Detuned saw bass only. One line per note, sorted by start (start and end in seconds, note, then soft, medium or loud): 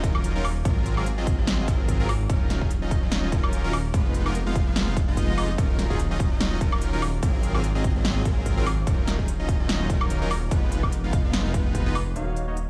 0.00 0.63 D#1 medium
0.65 2.28 G#1 medium
2.30 3.92 D#1 medium
3.94 5.57 F1 medium
5.58 7.21 D#1 medium
7.23 8.85 G#1 medium
8.87 10.50 D#1 medium
10.51 12.14 F1 medium
12.16 12.70 D#1 medium